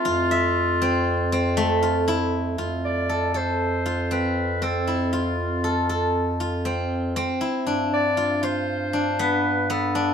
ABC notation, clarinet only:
X:1
M:5/4
L:1/8
Q:1/4=118
K:Flyd
V:1 name="Clarinet"
F8 z2 | z d2 c3 B2 A2 | F6 z4 | z d2 c3 B2 A2 |]